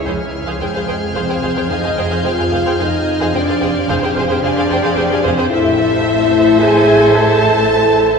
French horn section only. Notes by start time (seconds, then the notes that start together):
0.60 G#3
1.15 C4
1.68 D#4
2.24 F4
2.79 D#4
3.34 D4
3.89 C4
4.42 D4
5.23 C4
5.50 E4
6.59 G#4
7.15 A4